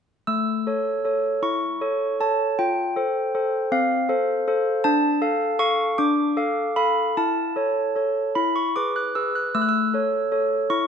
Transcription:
handbells
0.27 A3 E6
0.67 A4 C#5
1.05 A4 C#5
1.42 E4 C#6
1.81 A4 C#5
2.20 A4 C#5 A5
2.59 F4 G5
2.96 A4 C5
3.35 A4 C5
3.72 C4 F5
4.09 A4 C5
4.48 A4 C5
4.84 D4 A5
5.21 A4 F5
5.59 A4 F5 C#6
5.98 D4 D6
6.37 A4 F5
6.76 A4 F5 B5
7.17 E4 A5
7.56 A4 C#5
7.96 A4 C#5
8.35 E4 B5
8.56 C#6
8.76 G#4 B4 D6
8.96 F#6
9.15 G#4 B4 E6
9.35 F#6
9.55 A3 E6
9.62 F#6
9.69 E6
9.94 A4 C#5
10.32 A4 C#5
10.70 E4 C#6

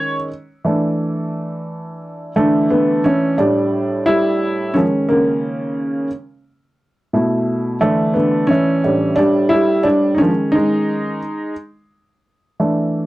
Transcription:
upright piano
Already playing: D#3 G#3 C#4 C#5
0.65 E3 A3 D4
2.36 D3 E3 A3 D4
2.71 D3 B3
3.04 E3 C#4
3.38 A2 G3 D4
4.06 G3 E4
4.74 D#3 F3 G#3 C#4
5.09 C#3 A#3
7.13 B2 A3 E4
7.81 D3 E3 A3 D4
8.14 D3 B3
8.47 E3 C#4
8.84 A2 G3 D4
9.16 G3 D4
9.49 G3 E4
9.83 G3 D4
10.15 C#4 D#4
10.20 D#3 F3 G#3 C#4
10.52 G#3 D#4
12.60 E3 A3 D4

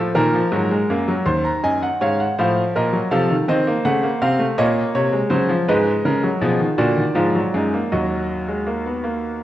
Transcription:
grand piano
Already playing: A2 F3
0.15 A#2 D#3 A#4
0.34 F3
0.52 G#2 F#3
0.71 G#3
0.90 F#2 A#3
1.08 F#3
1.25 D#2 D#3 C5 C6
1.45 A#5
1.64 F#2 D#5 G#5
1.83 F#5
2.01 G#2 C#5 F5
2.20 F#5
2.38 A2 F3 C5 F5
2.76 A#2 A#4 D#5
2.93 F#3
3.11 C3 F3 A4 F5
3.31 D#3
3.48 D#3 C4 C5 D#5
3.67 A#3
3.85 C#3 A3 F#5
4.03 A#3
4.22 C3 C4 F5
4.39 A3
4.58 A#2 A#3 C#5 D#5
4.95 C3 C#5
5.13 G#3
5.30 C#3 F#3 C5
5.49 F3
5.68 G#2 G#3 B4 D#5
6.05 C#3 A#4
6.23 F#3
6.41 B2 F3 G#4
6.60 D#3
6.78 A#2 D3 F#4 D5
6.97 D#3
7.15 G#2 F3 F4
7.35 F#3
7.54 F#2 G#3 D#4
7.74 A#3
7.92 D#2 F#3 F#4 D#5
8.49 G#3
8.67 A#3
8.86 B3
9.04 A#3

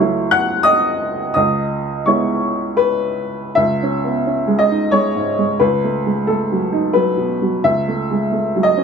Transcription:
upright piano
Already playing: C#2 C#5 C#6
0.00 F#3 A3 E4
0.31 F#5 F#6
0.63 D#5 D#6
1.34 C#2 D#5 D#6
2.06 G#3 B3 E4 C#5 C#6
2.77 B4
3.55 C#2 E5
3.83 C#4
4.04 B3
4.27 C#4
4.47 G#3
4.59 D#5
4.70 D#4
4.91 G#3 C#5
5.16 G#2
5.38 G#3
5.60 C#2 B4
5.84 A3
6.06 G#3
6.27 A3 A4
6.52 F#3
6.73 D#4
6.93 F#3 B4
7.17 B2
7.42 F#3
7.64 C#2 E5
7.88 A3
8.11 G#3
8.32 A3
8.56 F#3
8.63 D#5
8.77 C#4

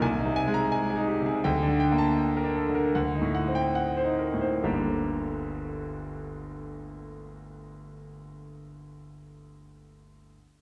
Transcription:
grand piano
0.02 C2 G#5
0.19 D#4
0.25 C3
0.36 G#5
0.47 G#3
0.54 A#5
0.72 G#5
0.90 G#4
0.96 D#4
1.08 G4
1.20 C3
1.26 G#4
1.44 D2 G5
1.63 D4
1.68 D3
1.80 G5
1.92 A#3
1.98 A5
2.18 G5
2.37 A#4
2.43 D4
2.56 A4
2.69 D3
2.75 A#4
2.95 D2 F#5
3.15 D#4
3.22 A2
3.35 F#5
3.48 C4
3.55 G5
3.75 F#5
3.97 C5
4.04 D#4
4.19 A#4
4.34 A2
4.41 C5
4.63 G1 D2 G3 A#3 D4 G4

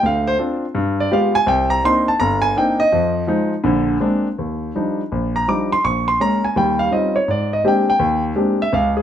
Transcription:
grand piano
0.03 D2 F5
0.27 C5
0.38 C4 D4 F4
0.75 G2
1.00 D5
1.11 G#3 B3 F4 G4 F5
1.35 G#5
1.46 C2 G5
1.70 A#5
1.84 A#3 C4 D4 D#4 C6
2.08 A5
2.20 G1 A#5
2.42 G#5
2.56 A#3 C4 D4 D#4 G5
2.80 D#5
2.92 F2 F3
3.27 F3 G#3 D#4
3.64 A#1 D3
4.00 G#3 A#3 C4 D4
4.38 D#2
4.75 F3 G3 D4 D#4
5.12 A#1
5.36 A#5
5.48 F3 G3 D4 D#4 D6
5.72 C6
5.84 A#1 C#6
6.08 C6
6.20 G#3 A#3 C#4 A#5
6.45 G#5
6.56 D#2 G3 G5
6.79 F5
6.91 G3 C4 C#4 D#4 F4 D#5
7.16 C#5
7.28 G#2 D5
7.53 D#5
7.64 G#3 A#3 C4 D4 G4 G5
7.90 G5
7.99 D#2
8.35 G#3 A#3 C4 D4 G4
8.62 E5
8.73 C#2 F5
8.97 G#4

